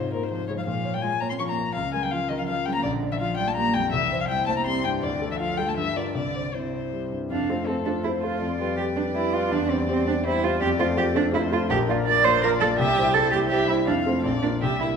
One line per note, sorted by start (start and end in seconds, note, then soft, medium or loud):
0.00 0.63 G#2 soft
0.00 0.15 C3 soft
0.00 0.24 F4 soft
0.00 0.13 C5 medium
0.00 0.13 C5 soft
0.13 0.23 A#2 soft
0.13 0.25 A#4 soft
0.13 0.42 C5 soft
0.22 0.30 C3 soft
0.22 0.30 C5 soft
0.31 0.48 C3 soft
0.31 0.60 F3 soft
0.31 0.47 C5 medium
0.48 0.57 C#3 soft
0.48 0.67 G#3 soft
0.48 0.52 C#5 medium
0.57 0.66 F3 soft
0.57 0.65 F5 medium
0.66 1.73 A#2 soft
0.66 0.95 F3 soft
0.66 0.95 F5 medium
0.85 1.14 C#5 soft
0.93 1.03 G3 soft
0.93 1.03 G5 medium
1.01 1.11 G#3 medium
1.01 1.32 F4 soft
1.01 1.22 G#5 medium
1.20 1.25 A#3 medium
1.20 1.51 C#5 soft
1.20 1.29 A#5 medium
1.30 1.34 C4 soft
1.30 1.33 C6 medium
1.39 1.68 F3 soft
1.39 1.44 C#4 medium
1.39 1.43 C#6 medium
1.49 1.57 A#3 medium
1.49 1.74 A#5 medium
1.58 1.76 A#3 soft
1.75 2.82 C#2 soft
1.75 1.83 F3 medium
1.75 1.93 F5 medium
1.93 1.98 G#3 medium
1.93 2.23 A#4 soft
1.93 2.04 G#5 medium
2.03 2.07 G3 soft
2.03 2.12 G5 medium
2.11 2.19 F3 medium
2.11 2.41 F4 soft
2.11 2.30 F5 medium
2.29 2.34 D#3 medium
2.29 2.59 A#4 soft
2.29 2.38 D#5 medium
2.38 2.48 F3 medium
2.38 2.42 F5 medium
2.47 2.77 F3 soft
2.47 2.56 F3 medium
2.47 2.67 F5 medium
2.65 2.85 C#3 soft
2.65 2.70 G3 medium
2.65 2.74 G5 medium
2.74 2.85 A#3 medium
2.74 2.83 A#5 medium
2.83 3.90 A#1 soft
2.83 3.11 D3 medium
2.83 2.91 D5 medium
3.03 3.32 D5 soft
3.12 3.15 E3 medium
3.12 3.15 E5 medium
3.20 3.38 F3 medium
3.20 3.50 F4 soft
3.20 3.36 F5 medium
3.37 3.42 G3 medium
3.37 3.68 D5 soft
3.37 3.49 G5 medium
3.47 3.55 A3 medium
3.47 3.55 A5 medium
3.55 3.86 G3 soft
3.55 3.76 A#3 medium
3.55 3.75 A#5 medium
3.73 3.93 F2 soft
3.73 3.92 G3 medium
3.73 3.92 G5 medium
3.92 5.00 C2 medium
3.92 4.22 E3 medium
3.92 4.20 E5 medium
4.12 4.41 C5 soft
4.20 4.29 F3 soft
4.20 4.24 F5 medium
4.28 4.37 G3 medium
4.28 4.59 E4 soft
4.28 4.46 G5 medium
4.47 4.51 A3 medium
4.47 4.77 C5 soft
4.47 4.56 A5 medium
4.57 4.61 A#3 medium
4.57 4.66 A#5 medium
4.65 4.96 G3 soft
4.65 4.86 C4 medium
4.65 4.84 C6 medium
4.85 5.04 G2 soft
4.85 5.04 G3 medium
4.85 4.92 G5 medium
5.02 5.75 D2 soft
5.02 5.29 D3 medium
5.02 5.30 D5 medium
5.22 5.51 A4 soft
5.30 5.41 E3 soft
5.30 5.35 E5 medium
5.39 5.60 F3 medium
5.39 5.70 F4 soft
5.39 5.59 F5 medium
5.57 5.69 G3 medium
5.57 5.78 A4 soft
5.57 5.70 G5 medium
5.68 5.79 A3 soft
5.68 5.76 A5 medium
5.77 6.15 G2 soft
5.77 5.97 E3 medium
5.77 5.98 E5 medium
5.96 6.05 D3 soft
5.96 6.14 F4 soft
5.96 6.14 A#4 soft
5.96 6.14 D5 medium
6.15 7.27 C2 soft
6.15 6.54 D3 soft
6.15 6.56 D5 medium
6.35 6.66 C5 soft
6.54 7.11 C3 soft
6.54 6.85 E4 soft
6.54 7.12 C5 soft
6.74 7.04 C5 soft
6.93 7.23 G3 soft
7.12 7.31 G2 soft
7.30 7.49 F2 soft
7.30 7.51 D4 medium
7.30 7.68 F5 medium
7.50 7.66 A3 soft
7.50 7.67 C4 medium
7.50 7.66 F4 soft
7.50 7.67 C5 soft
7.67 7.85 A3 soft
7.67 7.75 C4 medium
7.67 7.85 F4 soft
7.67 8.05 A4 soft
7.67 7.85 C5 soft
7.85 8.03 A3 soft
7.85 7.93 D4 medium
7.85 8.04 F4 soft
7.85 8.04 C5 soft
8.04 8.22 A3 soft
8.04 8.11 E4 medium
8.04 8.22 F4 soft
8.04 8.41 C5 medium
8.04 8.23 C5 soft
8.22 8.41 A3 soft
8.22 8.58 F4 medium
8.22 8.41 F4 soft
8.22 8.41 C5 soft
8.42 8.60 F2 medium
8.42 10.25 D5 medium
8.59 8.77 G3 soft
8.59 8.77 F4 medium
8.59 8.77 G4 soft
8.59 8.77 B4 soft
8.77 8.95 G3 soft
8.77 8.85 G4 medium
8.77 8.95 G4 soft
8.77 8.95 B4 soft
8.96 9.13 G3 soft
8.96 9.04 D4 medium
8.96 9.14 G4 soft
8.96 9.14 B4 soft
9.15 9.32 G3 soft
9.15 9.35 E4 medium
9.15 9.32 G4 soft
9.15 9.32 B4 soft
9.34 9.50 G3 soft
9.34 9.54 F4 medium
9.34 9.51 G4 soft
9.34 9.51 B4 soft
9.51 9.69 E2 medium
9.51 9.72 D4 medium
9.70 9.87 G3 soft
9.70 9.89 C4 medium
9.70 9.87 G4 soft
9.70 9.87 C5 soft
9.88 10.05 G3 soft
9.88 10.07 C4 medium
9.88 10.05 G4 soft
9.88 10.05 C5 soft
10.07 10.23 G3 soft
10.07 10.15 D4 medium
10.07 10.24 G4 soft
10.07 10.24 C5 soft
10.24 10.41 G3 soft
10.24 10.46 E4 medium
10.24 10.42 G4 soft
10.24 10.60 C5 medium
10.24 10.42 C5 medium
10.43 10.59 G3 soft
10.43 10.61 F4 medium
10.43 10.60 G4 soft
10.43 10.60 C5 medium
10.61 10.79 F2 medium
10.61 10.69 G4 medium
10.61 11.32 D5 medium
10.79 10.95 A3 soft
10.79 10.96 F4 soft
10.79 10.87 F4 medium
10.79 10.96 C5 medium
10.97 11.13 A3 soft
10.97 11.13 F4 soft
10.97 11.05 G4 medium
10.97 11.14 C5 medium
11.14 11.31 A3 soft
11.14 11.23 D4 medium
11.14 11.32 F4 soft
11.14 11.32 C5 medium
11.33 11.50 A3 medium
11.33 11.41 E4 medium
11.33 11.50 F4 medium
11.33 11.72 C5 medium
11.33 11.50 C5 medium
11.52 11.68 A3 soft
11.52 11.69 F4 soft
11.52 11.60 F4 medium
11.52 11.69 C5 medium
11.70 11.88 A#1 medium
11.70 11.78 G4 loud
11.70 12.43 A#4 medium
11.88 12.05 A#3 medium
11.88 12.05 F4 medium
11.88 11.97 F4 medium
11.88 12.05 D5 medium
12.06 12.23 A#3 medium
12.06 12.23 F4 soft
12.06 12.26 D5 loud
12.06 12.24 D5 medium
12.24 12.41 A#3 medium
12.24 12.42 F4 soft
12.24 12.42 C5 loud
12.24 12.42 D5 medium
12.42 12.59 A#3 medium
12.42 12.60 F4 medium
12.42 12.50 A#4 loud
12.42 12.78 D5 medium
12.42 12.60 D5 medium
12.61 12.78 A#3 medium
12.61 12.78 F4 soft
12.61 12.68 A4 medium
12.61 12.78 D5 medium
12.78 12.96 C2 medium
12.78 13.15 G4 loud
12.78 13.14 E5 medium
12.97 13.13 G3 soft
12.97 13.14 E4 soft
12.97 13.14 C5 medium
13.14 13.31 G3 medium
13.14 13.31 E4 medium
13.14 13.31 A4 loud
13.14 13.50 C5 medium
13.14 13.32 C5 medium
13.32 13.49 G3 soft
13.32 13.49 E4 soft
13.32 13.39 G4 medium
13.32 13.49 C5 medium
13.49 13.67 G3 medium
13.49 13.67 E4 medium
13.49 13.67 G4 medium
13.49 13.67 C5 medium
13.49 13.87 E5 medium
13.68 13.86 G3 soft
13.68 13.76 E4 medium
13.68 13.86 E4 soft
13.68 13.86 C5 medium
13.86 14.06 F2 medium
13.86 13.94 D4 medium
13.86 14.24 F5 medium
14.06 14.23 A3 soft
14.06 14.23 C4 medium
14.06 14.23 F4 soft
14.06 14.23 C5 medium
14.24 14.43 A#1 medium
14.24 14.32 C4 medium
14.24 14.61 D5 medium
14.43 14.60 A#3 soft
14.43 14.50 D4 medium
14.43 14.61 F4 soft
14.43 14.61 A#4 soft
14.62 14.81 C2 medium
14.62 14.80 G4 medium
14.62 14.97 E5 medium
14.80 14.97 A#3 soft
14.80 14.88 E4 medium
14.80 14.97 E4 soft
14.80 14.97 G4 soft